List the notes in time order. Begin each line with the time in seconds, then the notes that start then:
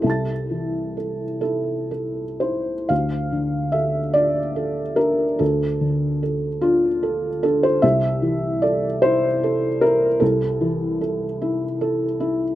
Already playing: E4
0.02 C2 A4 E5
0.07 A5 A6
0.51 E3
0.97 A4
1.41 E4 A4
1.91 A4
2.40 E4 C5
2.89 D2 F5
3.32 D3
3.72 A4 E5
4.14 D4 D5
4.56 A4
4.96 D4 A#4
5.39 D2 A4
5.81 D3
6.23 A4
6.61 D4 F4
7.03 A4
7.43 D4 A4
7.63 C5
7.82 C2 E5
8.22 E3
8.62 A4 D5
9.02 E4 C5
9.43 A4
9.81 E4 A#4
10.20 C2 A4
10.61 E3
11.01 A4
11.42 E4
11.81 A4
12.20 E4